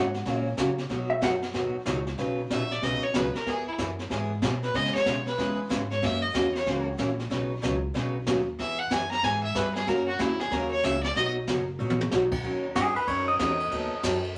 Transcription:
Already playing: G#2 F#5
0.14 snare
0.25 A#2 C#3 F#3 A#3 C#4 F#4, brush sweep, kick, snare
0.57 C#3 F#3 A#3 C#4 F#4, kick, snare, hi-hat pedal
0.78 snare
0.89 B2 F#3 B3 D#4 F#4, brush sweep, kick, snare
1.10 E5
1.21 F#2 B2 F#3 B3 D#4 F#4 F#5, kick, snare, hi-hat pedal
1.42 snare
1.54 D#2 B2 F#3 B3 D#4 F#4, brush sweep, kick, snare
1.73 muted upright bass stroke
1.86 C#2 B2 F#3 B3 D#4 F#4, kick, snare, hi-hat pedal
2.06 snare
2.18 B1 B2 C#3 F#3 B3 D#4 B4, brush sweep, kick, snare
2.50 A#1 B2 C#3 F#3 B3 D#4 B4 E5, kick, snare, hi-hat pedal
2.71 D5, snare
2.82 B1 B2 C#3 F#3 B3 D#4 B4 D#5, brush sweep, kick, snare
3.03 C#5
3.14 C#2 B2 C#3 F#3 B3 D#4 B4, kick, snare, hi-hat pedal
3.35 A#4, snare
3.46 E2 E3 B3 E4 G#4, brush sweep, kick, snare
3.66 E4, muted upright bass stroke
3.78 F#2 E3 B3 E4 G#4, kick, snare, hi-hat pedal
3.99 snare
4.10 G#2 E3 B3 E4 G#4, brush sweep, kick, snare
4.42 B2 E3 B3 E4 G#4, kick, snare, hi-hat pedal
4.63 B4, snare
4.74 C#3 G#3 B3 E4 G#4 D#5, brush sweep, kick, snare
4.85 snare
4.94 C#5, muted upright bass stroke, snare
5.06 B2 C#3 G#3 B3 E4 G#4, kick, snare, hi-hat pedal
5.27 B4, snare
5.38 E2 C#3 G#3 B3 E4 G#4, brush sweep, kick, snare
5.69 G#2 C#3 G#3 B3 E4 G#4, kick, snare, hi-hat pedal
5.91 C#5, snare
6.02 F#2 C#3 E3 A#3 C#4 F#4 E5, brush sweep, kick, snare
6.22 D#5
6.34 E2 C#3 E3 A#3 C#4 F#4, kick, snare, hi-hat pedal
6.55 C#5, snare
6.66 C#2 C#3 E3 A#3 C#4 F#4, brush sweep, kick, snare
6.98 A#1 C#3 E3 A#3 C#4 F#4, kick, snare, hi-hat pedal
7.19 snare
7.30 B1 B2 C#3 F#3 B3 D#4 B4, brush sweep, kick, snare
7.62 C#2 B2 C#3 F#3 B3 D#4 B4, kick, snare, hi-hat pedal
7.94 B1 B2 C#3 F#3 B3 D#4 B4, brush sweep, kick, snare
8.27 D#2 B2 C#3 F#3 B3 D#4 B4, kick, snare, hi-hat pedal
8.59 E2 E3 B3 E4 G#4 E5, brush sweep, kick, snare
8.79 F#5
8.90 F#2 E3 B3 E4 G#4 G#5, kick, snare, hi-hat pedal
9.11 A#5, snare
9.23 G#2 E3 B3 E4 G#4 G#5, brush sweep, kick, snare
9.43 E5
9.55 G2 E3 B3 E4 G#4 B4, kick, snare, hi-hat pedal
9.75 G#4, snare
9.86 F#2 C#3 F#3 A#3 C#4 F#4 A#4, brush sweep, kick, snare
10.08 F#4
10.19 E2 C#3 F#3 A#3 C#4 E4 F#4, kick, snare, hi-hat pedal
10.40 G#4, snare
10.51 D#2 C#3 F#3 A#3 C#4 F#4 A#4, brush sweep, kick, snare
10.71 C#5
10.83 C#2 C#3 F#3 A#3 C#4 F#4 E5, kick, snare, hi-hat pedal
11.03 D5, snare
11.15 B1 B2 F#3 B3 D#4 F#4 D#5, brush sweep, kick, snare
11.47 F#1 B2 F#3 B3 D#4 F#4, kick, snare, hi-hat pedal
11.79 A#1 B2 F#3 B3 D#4 F#4
11.90 high tom
12.01 high tom
12.11 B1 B2 F#3 B3 D#4 F#4, snare, hi-hat pedal
12.32 kick, crash
12.43 D#2 D#3 F#3 C#4 D#4 A#4, kick
12.75 G2 D#3 F#3 C#4 D#4 G#4 A#4, kick, snare, hi-hat pedal, ride
12.95 B4, muted upright bass stroke, ride
13.07 F#2 D#3 F#3 C#4 D#4 A#4 C#5, kick, ride
13.28 D#5, ride
13.39 E2 D#3 F#3 C#4 D#4 A#4, kick, snare, hi-hat pedal, ride
13.60 ride
13.71 D#2 D#3 F#3 B3 D#4 A4, kick, ride
14.03 F#2 D#3 F#3 B3 D#4 A4, kick, snare, hi-hat pedal, ride
14.24 ride

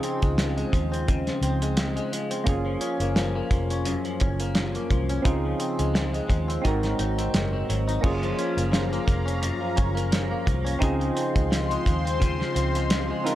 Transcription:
Already playing: C#3 F3 C4 D#4 F4 G#4
0.03 C4, closed hi-hat
0.22 C#2 G#3, kick, closed hi-hat
0.38 F3, snare, closed hi-hat
0.57 G#3, closed hi-hat
0.73 D#2 F3, kick, closed hi-hat
0.92 C4, closed hi-hat
1.08 C#3, kick, closed hi-hat
1.27 F3, snare, closed hi-hat
1.41 C#2 C4, closed hi-hat
1.62 G#3, closed hi-hat
1.77 F3, snare, closed hi-hat
1.96 G#3, closed hi-hat
2.13 F3, closed hi-hat
2.31 C4, closed hi-hat
2.44 F#1 A#3 C#4 F4, kick, closed hi-hat
2.49 G#4
2.66 F3
2.81 C#4, closed hi-hat
3.00 F#1 A#3, closed hi-hat
3.16 F3, snare, closed hi-hat
3.35 A#3
3.51 F1 F3, kick, closed hi-hat
3.70 C#4, closed hi-hat
3.85 F#2, closed hi-hat
4.05 F3, closed hi-hat
4.20 F#1 C#4, kick, closed hi-hat
4.40 A#3, closed hi-hat
4.55 F3, snare, closed hi-hat
4.75 A#3, closed hi-hat
4.90 C2 F3, kick, closed hi-hat
5.09 C#4, closed hi-hat
5.22 C#2 C#3 C4 D#4 F4, kick, closed hi-hat
5.27 G#4
5.45 F3
5.60 C4, closed hi-hat
5.79 C#2 G#3, closed hi-hat
5.94 F3, snare, closed hi-hat
6.13 G#3, closed hi-hat
6.28 D#2 F3, kick, closed hi-hat
6.48 C4, closed hi-hat
6.62 G#1 G#2 C4 D#4 F#4, kick, closed hi-hat
6.67 A#4
6.83 F#3, snare, closed hi-hat
6.99 G#1 D#4, closed hi-hat
7.18 C4, closed hi-hat
7.34 F#1 F#3, snare, closed hi-hat
7.53 C4
7.69 G#1 F#3, closed hi-hat
7.88 D#4, closed hi-hat
8.01 F#1 A#3 C#4 F4 F5 A#5, kick, crash
8.06 G#4
8.23 F3, closed hi-hat
8.39 C#4, closed hi-hat
8.57 F#1 A#3, closed hi-hat
8.72 F3, snare, closed hi-hat
8.92 A#3, closed hi-hat
9.07 F1 F3, kick, closed hi-hat
9.26 C#4, closed hi-hat
9.42 F#2, closed hi-hat
9.61 F3
9.76 F#1 C#4, kick, closed hi-hat
9.95 A#3, closed hi-hat
10.12 F3, snare, closed hi-hat
10.31 A#3
10.46 C2 F3, kick, closed hi-hat
10.65 C#4, closed hi-hat
10.79 C#2 C#3 C4 D#4 F4 C5 C6, kick, closed hi-hat
10.83 G#4
11.00 F3, closed hi-hat
11.15 C4, closed hi-hat
11.35 C#2 G#3, kick, closed hi-hat
11.51 F3, snare, closed hi-hat
11.70 G#3, closed hi-hat
11.86 D#2 F3, kick, closed hi-hat
12.05 C4, closed hi-hat
12.20 C#3, kick, closed hi-hat
12.40 F3, snare
12.55 C#2 C4, closed hi-hat
12.75 G#3, closed hi-hat
12.90 snare, closed hi-hat
13.11 G#3
13.24 F3 C4 D#4 F4 A#4, closed hi-hat

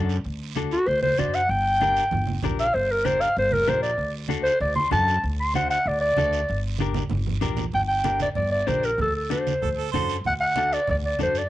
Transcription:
Already playing: F#2 D4 F#4 A4
0.09 short guiro
0.24 D2, long guiro
0.55 D4 F#4 A4, high conga, short guiro
0.71 F#4, short guiro
0.86 D2 C5, long guiro
1.02 C5, high conga
1.17 F#2 D4 F#4 C5 D5, high conga, short guiro
1.34 F#5, short guiro
1.49 G1 G5, long guiro
1.81 D4 G4 A#4, high conga, short guiro
1.96 short guiro
2.11 G1, low conga, long guiro
2.27 high conga
2.42 A#1 D4 G4 A#4, high conga, low conga, short guiro
2.59 F5, short guiro
2.74 G1 C5, long guiro
2.91 A#4
3.05 D4 G4 A#4 C5, high conga, short guiro
3.21 F5, short guiro
3.36 G1 C5, long guiro
3.52 A#4, high conga
3.67 A#1 D4 G4 A#4 C5, high conga, short guiro
3.82 D5, short guiro
3.98 D2, long guiro
4.28 D4 F#4 A4, high conga, short guiro
4.43 C5, short guiro
4.60 D2 D5, long guiro
4.75 C6, high conga
4.91 F#2 D4 F#4 A4 A5, high conga, low conga, short guiro
5.08 short guiro
5.24 D2, long guiro
5.40 C6
5.54 D4 F#4 C5 F#5, high conga, short guiro
5.70 F#5, short guiro
5.86 D2 D5, long guiro
6.00 D5
6.16 D2 D4 F#4 A4, high conga, short guiro
6.33 short guiro
6.49 G1, long guiro
6.78 D4 G4 A#4, high conga, short guiro
6.95 high conga, short guiro
7.10 G1, high conga, long guiro
7.27 low conga
7.41 A#1 D4 G4 A#4, low conga, short guiro
7.57 low conga, short guiro
7.72 G1 G5, high conga, low conga, long guiro
7.88 G5
8.04 D4 G4 A#4, high conga, short guiro
8.20 D5, high conga, short guiro
8.35 G1 D5, low conga, long guiro
8.51 D5, high conga
8.67 A#1 D4 G4 A#4 C5, high conga, short guiro
8.83 A#4, short guiro
8.98 D2 A4, high conga, low conga, long guiro
9.15 A4
9.30 D4 F#4 A4 C5, high conga, short guiro
9.47 high conga, short guiro
9.62 D2 A4, low conga, long guiro
9.76 A4, high conga
9.92 F#2 D4 F#4 A4 C5, high conga, low conga, short guiro
10.09 short guiro
10.24 D2 F#5, high conga, low conga, long guiro
10.40 F#5
10.56 D4 F#4 A4, high conga, short guiro
10.72 D5, short guiro
10.87 D2 D5, low conga, long guiro
11.03 D5, high conga
11.19 F#2 D4 F#4 A4 C5, high conga, low conga, short guiro
11.35 D5, short guiro

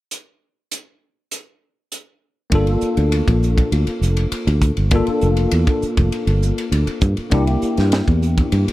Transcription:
0.11 closed hi-hat
0.71 closed hi-hat
1.31 closed hi-hat
1.92 closed hi-hat
2.50 G1 A#3 D4 F4, kick, ride
2.54 A4
2.67 ride
2.81 muted fingered electric bass stroke, hi-hat pedal
2.97 D2, ride
3.12 ride
3.28 A#1, kick, ride
3.43 hi-hat pedal
3.58 kick, ride
3.72 D2, ride
3.87 muted fingered electric bass stroke, ride
4.01 F1, hi-hat pedal
4.17 ride
4.32 muted fingered electric bass stroke, ride
4.47 D2, ride
4.62 kick, hi-hat pedal
4.77 G1, ride
4.91 A#3 D4 F4, kick, ride
4.95 A4
5.07 muted fingered electric bass stroke, ride
5.21 F1, hi-hat pedal
5.37 ride
5.51 E2, ride
5.67 kick, ride
5.82 muted fingered electric bass stroke, hi-hat pedal
5.97 F1, kick, ride
6.12 ride
6.27 G1, ride
6.42 hi-hat pedal
6.58 ride
6.72 D2, ride
6.87 muted fingered electric bass stroke, ride
7.01 G2, kick, hi-hat pedal
7.17 muted fingered electric bass stroke, ride
7.30 C2 A#3 D4 E4 G4, kick, ride
7.47 ride
7.62 muted fingered electric bass stroke, hi-hat pedal
7.77 G2, snare, ride
7.92 snare, ride
8.08 E2, kick, ride
8.22 hi-hat pedal
8.38 kick, ride
8.52 G2, ride
8.68 muted fingered electric bass stroke, ride

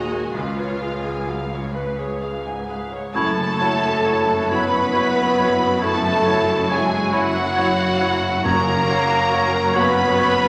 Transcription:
Already playing: D#2 A#2 D#3 F#3 G#3 F#4 G#4 A#4 D#5
0.10 G#3 G#5
0.32 C#2 C#3 F4 B4 F5
0.57 B4 C#5
0.80 G#3 G#4 F5
1.05 G#3 G#5
1.28 F#3 G#4 F5
1.52 G#3 C#5
1.74 B4
1.98 G#4 C#5
2.20 G#3 G#4 F5
2.44 G#2 G#5
2.67 G#4 B4 F5
2.92 G#3 C#5
3.14 F#1 F#2 A3 E4 F#4 A4 C#5 A5
3.39 C#3
3.58 F#3 E4 C#5
3.84 E4
4.04 F#3 E4 C#5
4.29 F#4
4.49 F#3 B3 E4 B4 C#5 E5 B5
4.74 C#6
4.93 F#3 E4 C#5 E5
5.18 F#4
5.37 F#3 E4 C#5
5.61 E4
5.81 F#2 A3 E4 A4 C#5 A5
6.05 C#3
6.25 F#3 E4 C#5
6.48 E4
6.69 F#3 G#3 E4 G#4 C#5 G#5
6.92 F#4
7.11 F#3 E4 F#4 C#5 E5 F#5
7.36 C#6
7.56 F#3 E4 C#5 E5
7.80 F#4
8.00 F#3 E4 C#5
8.24 E4
8.44 F#1 F#2 A#3 C#4 F#4 A#4 C#5 A#5
8.68 C#3
8.88 F#3 F#4 C#5
9.11 F#4
9.31 F#3 F#4 C#5
9.54 F#4
9.73 F#3 B3 F#4 B4 C#5 F#5 B5
9.97 C#6
10.17 F#3 F#4 C#5 F#5
10.41 F#4

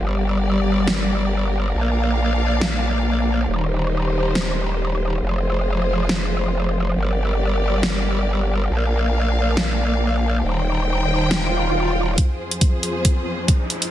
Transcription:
0.01 G1 G3 G4 A#4 D5
0.88 snare
1.74 A#1 A#3 D5 F5
2.61 snare
3.48 D#1 D#3 D#4 G4 C5
4.35 snare
5.22 F1 F3 F4 G#4 C5
6.09 snare
6.96 G1 G3 G4 A#4 D5
7.83 snare
8.70 A#1 A#3 D5 F5
9.57 snare
10.44 D#1 D#3 D#4 C5 G5
11.31 snare, swell
12.18 F2 F3 G#4 C5, kick, closed hi-hat, riser
12.51 closed hi-hat
12.61 kick, closed hi-hat
12.83 closed hi-hat
13.05 kick, closed hi-hat
13.48 kick, closed hi-hat
13.70 closed hi-hat
13.82 closed hi-hat

